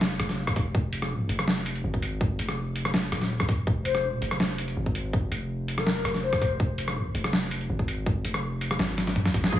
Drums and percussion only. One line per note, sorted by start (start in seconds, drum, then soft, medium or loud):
0.01 snare loud
0.20 cross-stick medium
0.20 closed hi-hat medium
0.29 snare soft
0.29 closed hi-hat soft
0.47 kick medium
0.47 cross-stick medium
0.56 kick loud
0.56 closed hi-hat medium
0.75 kick loud
0.93 closed hi-hat medium
1.02 cross-stick medium
1.29 closed hi-hat medium
1.39 cross-stick medium
1.48 snare loud
1.66 closed hi-hat medium
1.75 closed hi-hat soft
1.94 kick medium
2.02 closed hi-hat medium
2.21 kick loud
2.39 closed hi-hat medium
2.49 cross-stick medium
2.76 closed hi-hat medium
2.85 cross-stick medium
2.94 snare loud
3.12 cross-stick medium
3.12 closed hi-hat medium
3.22 snare soft
3.22 closed hi-hat soft
3.40 kick medium
3.40 cross-stick medium
3.49 kick loud
3.49 closed hi-hat medium
3.67 kick loud
3.85 closed hi-hat medium
3.95 cross-stick medium
4.22 closed hi-hat medium
4.31 cross-stick medium
4.40 snare loud
4.58 closed hi-hat medium
4.68 closed hi-hat soft
4.86 kick medium
4.95 closed hi-hat medium
5.13 kick loud
5.32 closed hi-hat medium
5.68 closed hi-hat medium
5.78 cross-stick medium
5.87 snare loud
6.05 cross-stick medium
6.05 closed hi-hat medium
6.15 snare soft
6.15 closed hi-hat soft
6.33 kick medium
6.33 cross-stick medium
6.42 kick loud
6.42 closed hi-hat medium
6.60 kick loud
6.78 closed hi-hat medium
6.88 cross-stick medium
7.15 closed hi-hat medium
7.24 cross-stick medium
7.33 snare loud
7.51 closed hi-hat medium
7.61 closed hi-hat soft
7.79 kick medium
7.88 closed hi-hat medium
8.06 kick loud
8.25 closed hi-hat medium
8.34 cross-stick medium
8.61 closed hi-hat medium
8.71 cross-stick medium
8.79 snare loud
8.98 snare medium
8.98 closed hi-hat medium
9.07 snare medium
9.07 closed hi-hat soft
9.16 mid tom medium
9.26 kick medium
9.26 snare medium
9.34 kick loud
9.34 closed hi-hat medium
9.44 snare medium
9.53 kick loud